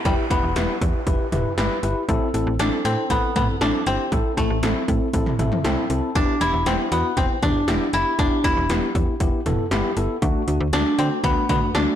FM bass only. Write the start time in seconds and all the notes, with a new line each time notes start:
0.05 E1
0.31 E1
0.43 E1
0.56 E1
0.81 E2
1.07 E1
1.32 E1
1.58 G1
1.83 G1
2.09 A1
2.34 A1
2.47 A1
2.60 A1
2.85 A2
3.10 A1
3.36 A2
3.61 A1
3.87 G1
4.12 A1
4.37 A1
4.50 A1
4.63 A1
4.88 A2
5.13 A1
5.39 A1
5.65 C2
5.90 C2
6.15 E1
6.41 E1
6.54 E1
6.66 E1
6.92 E2
7.17 E1
7.43 E2
7.68 E1
7.93 F#1
8.19 E1
8.44 E1
8.57 E1
8.70 E1
8.95 E2
9.20 E1
9.46 E1
9.71 G1
9.97 G1
10.22 D2
10.48 D2
10.60 D2
10.73 D2
10.99 D3
11.24 D2
11.49 D3
11.75 D2